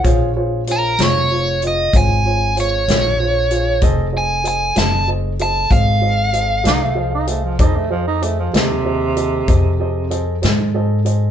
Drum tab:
HH |x-xx-xx-xx-x|x-xx-xx-xx-x|x-xx-xx-xx-x|
SD |---o-----o--|---o-----o--|---o-----o--|
BD |o-----o-----|o-----o-----|o-----o-----|